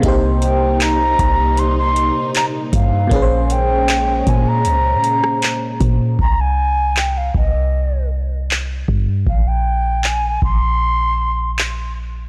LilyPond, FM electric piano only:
\new Staff \with { instrumentName = "FM electric piano" } { \time 4/4 \key c \phrygian \tempo 4 = 78 <c bes ees' g' c''>1 | <bes, bes des' aes' ces'' c''>1 | r1 | r1 | }